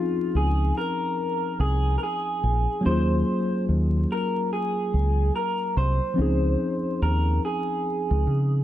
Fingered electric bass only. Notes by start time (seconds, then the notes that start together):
0.35 C#2
1.59 C2
2.44 A#1
2.86 D#2
3.69 D#2
4.94 C#2
5.77 C2
6.19 C#2
7.02 D#2
8.11 C#2
8.27 C#3